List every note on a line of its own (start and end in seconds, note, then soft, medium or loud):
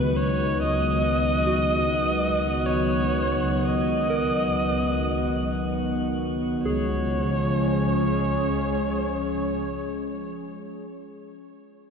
0.00 6.59 C#2 medium
0.00 6.64 D#3 medium
0.00 6.64 F#3 medium
0.00 6.64 B3 medium
0.00 1.16 F4 medium
0.00 6.65 F#4 medium
0.00 0.11 B4 medium
0.00 0.17 B4 medium
0.00 6.64 D#5 medium
0.00 6.65 F#6 medium
0.16 0.62 C#5 medium
0.63 2.67 D#5 loud
1.47 4.63 F#4 medium
2.65 3.67 C#5 medium
3.65 5.65 D#5 medium
4.10 7.11 A#4 medium
6.64 9.60 C#2 medium
6.64 10.30 F3 medium
6.64 10.31 G#4 soft
6.64 10.29 C#5 medium
6.80 10.45 G#3 medium
6.95 10.60 C#4 medium
7.11 10.76 G#4 medium
7.28 10.94 C#5 medium